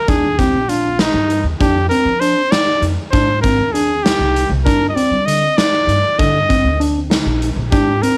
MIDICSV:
0, 0, Header, 1, 5, 480
1, 0, Start_track
1, 0, Tempo, 612245
1, 58, Time_signature, 5, 3, 24, 8
1, 6409, End_track
2, 0, Start_track
2, 0, Title_t, "Trumpet"
2, 0, Program_c, 0, 56
2, 0, Note_on_c, 0, 70, 80
2, 70, Note_on_c, 0, 68, 83
2, 81, Note_off_c, 0, 70, 0
2, 307, Note_on_c, 0, 67, 73
2, 319, Note_off_c, 0, 68, 0
2, 543, Note_on_c, 0, 65, 70
2, 555, Note_off_c, 0, 67, 0
2, 784, Note_on_c, 0, 63, 75
2, 796, Note_off_c, 0, 65, 0
2, 1141, Note_off_c, 0, 63, 0
2, 1257, Note_on_c, 0, 67, 74
2, 1480, Note_off_c, 0, 67, 0
2, 1486, Note_on_c, 0, 70, 81
2, 1729, Note_on_c, 0, 72, 89
2, 1740, Note_off_c, 0, 70, 0
2, 1970, Note_on_c, 0, 74, 91
2, 1982, Note_off_c, 0, 72, 0
2, 2242, Note_off_c, 0, 74, 0
2, 2441, Note_on_c, 0, 72, 87
2, 2671, Note_off_c, 0, 72, 0
2, 2678, Note_on_c, 0, 70, 77
2, 2924, Note_on_c, 0, 68, 75
2, 2935, Note_off_c, 0, 70, 0
2, 3164, Note_on_c, 0, 67, 87
2, 3176, Note_off_c, 0, 68, 0
2, 3530, Note_off_c, 0, 67, 0
2, 3643, Note_on_c, 0, 70, 82
2, 3822, Note_off_c, 0, 70, 0
2, 3835, Note_on_c, 0, 75, 61
2, 3885, Note_on_c, 0, 74, 80
2, 3896, Note_off_c, 0, 75, 0
2, 4123, Note_on_c, 0, 75, 87
2, 4135, Note_off_c, 0, 74, 0
2, 4369, Note_on_c, 0, 74, 101
2, 4381, Note_off_c, 0, 75, 0
2, 4853, Note_on_c, 0, 75, 83
2, 4865, Note_off_c, 0, 74, 0
2, 5334, Note_off_c, 0, 75, 0
2, 6050, Note_on_c, 0, 67, 80
2, 6291, Note_on_c, 0, 70, 87
2, 6303, Note_off_c, 0, 67, 0
2, 6409, Note_off_c, 0, 70, 0
2, 6409, End_track
3, 0, Start_track
3, 0, Title_t, "Tine electric piano"
3, 0, Program_c, 1, 4
3, 64, Note_on_c, 1, 62, 80
3, 213, Note_off_c, 1, 62, 0
3, 304, Note_on_c, 1, 60, 67
3, 453, Note_off_c, 1, 60, 0
3, 544, Note_on_c, 1, 62, 60
3, 693, Note_off_c, 1, 62, 0
3, 781, Note_on_c, 1, 63, 69
3, 1082, Note_off_c, 1, 63, 0
3, 1258, Note_on_c, 1, 62, 80
3, 1409, Note_off_c, 1, 62, 0
3, 1496, Note_on_c, 1, 60, 63
3, 1648, Note_off_c, 1, 60, 0
3, 1732, Note_on_c, 1, 62, 70
3, 1885, Note_off_c, 1, 62, 0
3, 1974, Note_on_c, 1, 63, 74
3, 2277, Note_off_c, 1, 63, 0
3, 2451, Note_on_c, 1, 62, 82
3, 2604, Note_off_c, 1, 62, 0
3, 2692, Note_on_c, 1, 60, 60
3, 2844, Note_off_c, 1, 60, 0
3, 2934, Note_on_c, 1, 62, 63
3, 3086, Note_off_c, 1, 62, 0
3, 3174, Note_on_c, 1, 63, 65
3, 3477, Note_off_c, 1, 63, 0
3, 3652, Note_on_c, 1, 62, 81
3, 3805, Note_off_c, 1, 62, 0
3, 3890, Note_on_c, 1, 60, 66
3, 4043, Note_off_c, 1, 60, 0
3, 4132, Note_on_c, 1, 50, 58
3, 4285, Note_off_c, 1, 50, 0
3, 4371, Note_on_c, 1, 63, 71
3, 4675, Note_off_c, 1, 63, 0
3, 4852, Note_on_c, 1, 50, 86
3, 5004, Note_off_c, 1, 50, 0
3, 5089, Note_on_c, 1, 60, 62
3, 5243, Note_off_c, 1, 60, 0
3, 5331, Note_on_c, 1, 62, 70
3, 5484, Note_off_c, 1, 62, 0
3, 5567, Note_on_c, 1, 63, 77
3, 5872, Note_off_c, 1, 63, 0
3, 6053, Note_on_c, 1, 62, 78
3, 6205, Note_off_c, 1, 62, 0
3, 6293, Note_on_c, 1, 60, 66
3, 6409, Note_off_c, 1, 60, 0
3, 6409, End_track
4, 0, Start_track
4, 0, Title_t, "Upright bass"
4, 0, Program_c, 2, 32
4, 62, Note_on_c, 2, 39, 80
4, 378, Note_off_c, 2, 39, 0
4, 416, Note_on_c, 2, 34, 63
4, 841, Note_off_c, 2, 34, 0
4, 894, Note_on_c, 2, 43, 81
4, 1108, Note_off_c, 2, 43, 0
4, 1126, Note_on_c, 2, 39, 80
4, 1237, Note_off_c, 2, 39, 0
4, 1258, Note_on_c, 2, 41, 86
4, 1470, Note_off_c, 2, 41, 0
4, 1609, Note_on_c, 2, 53, 70
4, 1825, Note_off_c, 2, 53, 0
4, 2206, Note_on_c, 2, 41, 68
4, 2317, Note_off_c, 2, 41, 0
4, 2455, Note_on_c, 2, 44, 86
4, 2774, Note_off_c, 2, 44, 0
4, 2810, Note_on_c, 2, 39, 64
4, 3237, Note_off_c, 2, 39, 0
4, 3285, Note_on_c, 2, 36, 69
4, 3503, Note_off_c, 2, 36, 0
4, 3525, Note_on_c, 2, 36, 88
4, 3636, Note_off_c, 2, 36, 0
4, 3656, Note_on_c, 2, 43, 77
4, 3869, Note_off_c, 2, 43, 0
4, 4008, Note_on_c, 2, 55, 68
4, 4224, Note_off_c, 2, 55, 0
4, 4604, Note_on_c, 2, 43, 66
4, 4715, Note_off_c, 2, 43, 0
4, 4855, Note_on_c, 2, 43, 84
4, 5174, Note_off_c, 2, 43, 0
4, 5207, Note_on_c, 2, 38, 67
4, 5636, Note_off_c, 2, 38, 0
4, 5687, Note_on_c, 2, 34, 79
4, 5904, Note_off_c, 2, 34, 0
4, 5929, Note_on_c, 2, 34, 87
4, 6038, Note_off_c, 2, 34, 0
4, 6054, Note_on_c, 2, 44, 85
4, 6268, Note_off_c, 2, 44, 0
4, 6409, End_track
5, 0, Start_track
5, 0, Title_t, "Drums"
5, 64, Note_on_c, 9, 42, 64
5, 65, Note_on_c, 9, 36, 84
5, 142, Note_off_c, 9, 42, 0
5, 143, Note_off_c, 9, 36, 0
5, 304, Note_on_c, 9, 36, 65
5, 307, Note_on_c, 9, 42, 55
5, 382, Note_off_c, 9, 36, 0
5, 385, Note_off_c, 9, 42, 0
5, 542, Note_on_c, 9, 42, 57
5, 620, Note_off_c, 9, 42, 0
5, 777, Note_on_c, 9, 38, 92
5, 777, Note_on_c, 9, 42, 65
5, 855, Note_off_c, 9, 38, 0
5, 855, Note_off_c, 9, 42, 0
5, 1018, Note_on_c, 9, 42, 49
5, 1096, Note_off_c, 9, 42, 0
5, 1257, Note_on_c, 9, 42, 61
5, 1259, Note_on_c, 9, 36, 85
5, 1336, Note_off_c, 9, 42, 0
5, 1337, Note_off_c, 9, 36, 0
5, 1497, Note_on_c, 9, 42, 49
5, 1575, Note_off_c, 9, 42, 0
5, 1736, Note_on_c, 9, 42, 50
5, 1815, Note_off_c, 9, 42, 0
5, 1977, Note_on_c, 9, 38, 92
5, 1977, Note_on_c, 9, 42, 77
5, 2055, Note_off_c, 9, 38, 0
5, 2055, Note_off_c, 9, 42, 0
5, 2213, Note_on_c, 9, 42, 52
5, 2292, Note_off_c, 9, 42, 0
5, 2454, Note_on_c, 9, 42, 61
5, 2456, Note_on_c, 9, 36, 85
5, 2533, Note_off_c, 9, 42, 0
5, 2534, Note_off_c, 9, 36, 0
5, 2693, Note_on_c, 9, 42, 53
5, 2696, Note_on_c, 9, 36, 66
5, 2771, Note_off_c, 9, 42, 0
5, 2774, Note_off_c, 9, 36, 0
5, 2940, Note_on_c, 9, 42, 60
5, 3018, Note_off_c, 9, 42, 0
5, 3182, Note_on_c, 9, 38, 99
5, 3182, Note_on_c, 9, 42, 81
5, 3260, Note_off_c, 9, 38, 0
5, 3260, Note_off_c, 9, 42, 0
5, 3421, Note_on_c, 9, 42, 55
5, 3499, Note_off_c, 9, 42, 0
5, 3658, Note_on_c, 9, 36, 92
5, 3663, Note_on_c, 9, 42, 71
5, 3737, Note_off_c, 9, 36, 0
5, 3742, Note_off_c, 9, 42, 0
5, 3899, Note_on_c, 9, 42, 55
5, 3977, Note_off_c, 9, 42, 0
5, 4139, Note_on_c, 9, 42, 57
5, 4218, Note_off_c, 9, 42, 0
5, 4375, Note_on_c, 9, 38, 96
5, 4375, Note_on_c, 9, 42, 74
5, 4454, Note_off_c, 9, 38, 0
5, 4454, Note_off_c, 9, 42, 0
5, 4616, Note_on_c, 9, 42, 48
5, 4694, Note_off_c, 9, 42, 0
5, 4856, Note_on_c, 9, 36, 83
5, 4858, Note_on_c, 9, 42, 62
5, 4934, Note_off_c, 9, 36, 0
5, 4937, Note_off_c, 9, 42, 0
5, 5096, Note_on_c, 9, 36, 68
5, 5099, Note_on_c, 9, 42, 54
5, 5175, Note_off_c, 9, 36, 0
5, 5177, Note_off_c, 9, 42, 0
5, 5339, Note_on_c, 9, 42, 51
5, 5417, Note_off_c, 9, 42, 0
5, 5577, Note_on_c, 9, 38, 97
5, 5577, Note_on_c, 9, 42, 68
5, 5655, Note_off_c, 9, 38, 0
5, 5655, Note_off_c, 9, 42, 0
5, 5817, Note_on_c, 9, 42, 49
5, 5895, Note_off_c, 9, 42, 0
5, 6054, Note_on_c, 9, 42, 61
5, 6055, Note_on_c, 9, 36, 88
5, 6133, Note_off_c, 9, 42, 0
5, 6134, Note_off_c, 9, 36, 0
5, 6298, Note_on_c, 9, 42, 59
5, 6376, Note_off_c, 9, 42, 0
5, 6409, End_track
0, 0, End_of_file